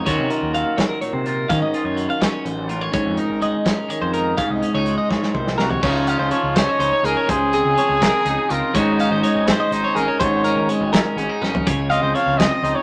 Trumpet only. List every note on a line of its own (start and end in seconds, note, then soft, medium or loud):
5.61 5.83 F#4 medium
5.84 6.59 F4 medium
6.57 7.07 C#5 loud
7.05 7.31 A#4 medium
7.30 8.52 G#4 loud
8.50 8.75 F4 medium
8.77 9.49 D#4 medium
9.48 9.97 C5 loud
9.96 10.22 A#4 medium
10.21 10.75 C#5 medium
11.90 12.17 D#5 medium
12.15 12.39 F5 loud
12.38 12.77 D#5 loud
12.75 12.82 C#5 medium